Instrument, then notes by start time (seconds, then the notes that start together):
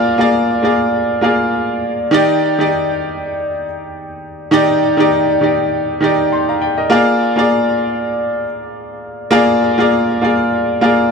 grand piano
Already playing: A#3 F4 G#4 D5
0.18 A#3 F4 G#4 D5
0.62 A#3 F4 G#4 D5
1.21 A#3 F4 G#4 D5
2.11 D#3 D#4 G4 D5
2.58 D#3 D#4 G4 D5
4.51 D#3 D#4 G4 D5
4.97 D#3 D#4 G4 D5
5.41 D#3 D#4 G4 D5
6.01 D#3 D#4 G4 D5
6.32 G5 C6
6.49 F5 A#5
6.62 D5 G5
6.78 A#4 D#5
6.90 A#3 F4 G#4 D5
7.36 A#3 F4 G#4 D5
9.31 A#3 F4 G#4 D5
9.78 A#3 F4 G#4 D5
10.21 A#3 F4 G#4 D5
10.81 A#3 F4 G#4 D5